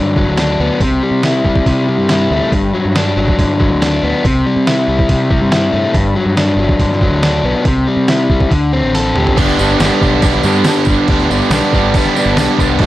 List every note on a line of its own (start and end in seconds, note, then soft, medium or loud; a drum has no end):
0.00 0.16 G2 medium
0.00 0.28 G2 medium
0.00 0.81 D3 medium
0.00 0.16 F#3 medium
0.00 0.38 D4 medium
0.16 0.81 F#3 medium
0.16 kick medium
0.28 0.56 D2 medium
0.37 0.81 D4 medium
0.37 snare loud
0.37 open hi-hat medium
0.60 0.69 D2 medium
0.60 0.81 B3 medium
0.80 0.99 C2 medium
0.80 1.66 C3 medium
0.80 kick medium
0.80 open hi-hat soft
1.03 1.45 G3 medium
1.11 1.40 C3 medium
1.23 2.09 E4 medium
1.23 snare loud
1.23 open hi-hat soft
1.45 1.54 C2 medium
1.45 1.88 G3 medium
1.45 kick medium
1.56 kick medium
1.66 1.98 C3 medium
1.66 2.52 C3 medium
1.66 kick medium
1.66 open hi-hat soft
1.89 2.74 G3 medium
1.98 2.26 G2 medium
2.09 2.53 E4 medium
2.09 snare loud
2.09 open hi-hat soft
2.31 2.40 D2 medium
2.31 2.53 A3 medium
2.52 2.71 G1 medium
2.52 3.60 G2 medium
2.52 kick medium
2.52 open hi-hat soft
2.74 3.16 F#3 medium
2.85 3.13 G2 medium
2.95 3.80 D4 medium
2.95 snare loud
2.95 open hi-hat soft
3.17 3.26 G1 medium
3.17 3.59 F#3 medium
3.28 kick medium
3.38 3.71 G2 medium
3.38 4.24 D3 medium
3.38 kick medium
3.38 open hi-hat soft
3.60 4.24 F#3 medium
3.60 kick medium
3.71 3.99 D2 medium
3.82 4.24 D4 medium
3.82 snare loud
3.82 open hi-hat medium
4.03 4.12 D2 medium
4.03 4.24 B3 medium
4.25 4.43 C2 medium
4.25 5.08 C3 medium
4.25 kick loud
4.25 open hi-hat soft
4.46 4.88 G3 medium
4.56 4.84 C3 medium
4.67 5.50 E4 medium
4.67 snare loud
4.67 open hi-hat soft
4.88 4.97 C2 medium
4.88 5.30 G3 medium
4.99 kick medium
5.09 5.41 C3 medium
5.09 5.95 C3 medium
5.09 kick medium
5.09 open hi-hat soft
5.30 6.16 G3 medium
5.30 kick medium
5.41 5.70 G2 medium
5.51 5.94 E4 medium
5.51 snare loud
5.51 open hi-hat soft
5.73 5.83 G2 medium
5.73 5.94 A3 medium
5.93 6.13 G1 medium
5.93 7.01 G2 medium
5.93 kick loud
5.93 open hi-hat soft
6.16 6.58 F#3 medium
6.26 6.55 G2 medium
6.37 7.21 D4 medium
6.37 snare medium
6.37 open hi-hat soft
6.56 6.67 G1 medium
6.56 7.01 F#3 medium
6.69 kick medium
6.79 7.10 G2 medium
6.79 7.65 D3 medium
6.79 kick medium
6.79 open hi-hat soft
6.91 snare soft
7.01 7.66 F#3 medium
7.01 kick medium
7.10 7.39 D2 medium
7.22 7.66 D4 medium
7.22 snare loud
7.22 open hi-hat soft
7.43 7.53 B1 medium
7.43 7.66 B3 medium
7.65 7.85 C2 medium
7.65 8.50 C3 medium
7.65 kick medium
7.65 open hi-hat soft
7.88 8.30 G3 medium
7.97 8.26 C3 medium
8.08 8.52 E4 medium
8.08 snare loud
8.08 open hi-hat soft
8.29 8.39 C2 medium
8.29 8.52 G3 medium
8.29 kick medium
8.41 kick medium
8.50 8.82 D2 medium
8.50 9.37 D3 medium
8.50 kick medium
8.50 open hi-hat soft
8.73 9.37 C4 medium
8.82 9.12 A1 medium
8.95 9.37 A4 medium
8.95 snare medium
8.95 open hi-hat soft
9.14 9.25 D2 medium
9.14 9.38 G4 medium
9.14 mid tom medium
9.27 floor tom medium
9.35 9.47 G1 medium
9.35 9.59 G2 loud
9.35 9.58 D3 loud
9.35 12.75 G4 medium
9.35 9.59 G4 loud
9.35 12.76 B4 medium
9.35 12.86 D5 medium
9.35 12.86 A5 medium
9.35 kick loud
9.35 crash loud
9.35 tambourine soft
9.35 crash medium
9.39 9.60 G3 loud
9.39 9.60 B3 loud
9.39 9.60 D4 loud
9.49 tambourine soft
9.59 9.78 G1 loud
9.59 9.80 G2 medium
9.59 9.80 D3 medium
9.59 9.81 G3 medium
9.59 9.82 B3 medium
9.59 9.82 D4 medium
9.59 9.80 G4 medium
9.59 tambourine medium
9.70 tambourine soft
9.80 9.89 G1 medium
9.80 10.01 G2 medium
9.80 10.01 D3 loud
9.80 10.02 G3 medium
9.80 10.03 B3 medium
9.80 10.03 D4 loud
9.80 10.02 G4 loud
9.80 snare loud
9.80 tambourine medium
9.80 crash medium
10.01 10.40 B1 medium
10.01 10.23 G2 medium
10.01 10.23 D3 medium
10.01 10.24 G3 medium
10.01 10.25 B3 medium
10.01 10.25 D4 medium
10.01 10.22 G4 medium
10.01 kick medium
10.01 tambourine soft
10.22 10.44 G2 medium
10.22 10.45 D3 loud
10.22 10.44 G3 medium
10.22 10.46 B3 loud
10.22 10.46 D4 medium
10.22 10.44 G4 loud
10.22 kick loud
10.22 tambourine medium
10.22 crash medium
10.33 tambourine soft
10.43 10.63 G2 loud
10.43 10.65 G2 medium
10.43 10.66 D3 medium
10.43 10.66 G3 medium
10.43 10.67 B3 medium
10.43 10.68 D4 medium
10.43 10.66 G4 medium
10.43 snare soft
10.43 tambourine medium
10.64 10.86 G2 medium
10.64 10.87 D3 medium
10.64 10.87 G3 loud
10.64 10.88 B3 loud
10.64 10.88 G4 loud
10.64 snare loud
10.64 tambourine medium
10.64 crash medium
10.68 10.89 D4 medium
10.85 10.96 G1 medium
10.85 11.07 G2 medium
10.85 11.08 D3 medium
10.85 11.09 G3 loud
10.85 kick medium
10.85 tambourine medium
10.89 11.09 B3 medium
10.89 11.11 D4 loud
10.89 11.08 G4 medium
11.08 11.27 D2 loud
11.08 11.30 G2 loud
11.08 11.30 D3 loud
11.08 11.30 G3 loud
11.08 11.31 B3 loud
11.08 11.32 D4 loud
11.08 11.30 G4 loud
11.08 kick loud
11.08 tambourine soft
11.08 crash medium
11.19 tambourine soft
11.30 11.39 G1 medium
11.30 11.51 G2 medium
11.30 11.52 D3 medium
11.30 11.53 G3 medium
11.30 11.53 B3 medium
11.30 11.55 D4 medium
11.30 11.51 G4 medium
11.30 tambourine medium
11.42 tambourine soft
11.50 11.60 B1 loud
11.50 11.72 G2 loud
11.50 11.72 D3 medium
11.50 11.73 G3 loud
11.50 11.74 B3 loud
11.50 11.73 G4 loud
11.50 snare loud
11.50 tambourine medium
11.50 crash medium
11.55 11.75 D4 loud
11.73 11.92 G1 medium
11.73 11.95 G2 medium
11.73 11.96 D3 medium
11.73 11.96 G3 medium
11.73 11.97 B3 medium
11.73 11.97 D4 medium
11.73 11.95 G4 loud
11.73 kick medium
11.73 tambourine soft
11.94 12.15 G2 medium
11.94 12.16 D3 medium
11.94 12.16 G3 loud
11.94 12.17 B3 loud
11.94 12.18 D4 loud
11.94 12.17 G4 loud
11.94 kick loud
11.94 tambourine medium
11.94 crash medium
12.06 snare soft
12.16 12.37 G2 medium
12.16 12.37 D3 medium
12.16 12.38 G3 medium
12.16 12.38 B3 loud
12.16 12.39 D4 loud
12.16 12.37 G4 medium
12.16 tambourine medium
12.26 12.35 G1 medium
12.36 12.46 B1 loud
12.36 12.57 G2 loud
12.36 12.58 D3 medium
12.36 12.59 G3 medium
12.36 12.59 B3 loud
12.36 12.61 D4 loud
12.36 12.60 G4 loud
12.36 snare loud
12.36 tambourine loud
12.36 crash medium
12.58 12.79 C2 medium
12.58 12.79 G2 loud
12.58 12.79 D3 loud
12.58 12.79 G3 loud
12.58 12.80 B3 medium
12.58 12.82 D4 loud
12.58 12.80 G4 loud
12.58 kick medium
12.58 tambourine medium
12.78 12.86 D2 loud
12.78 12.86 D3 loud
12.78 12.86 F#3 loud
12.78 12.86 A3 loud
12.78 12.86 F#4 medium
12.78 12.86 F#4 loud
12.78 12.86 A4 medium
12.78 kick loud
12.78 tambourine soft
12.78 crash medium
12.82 12.86 D4 loud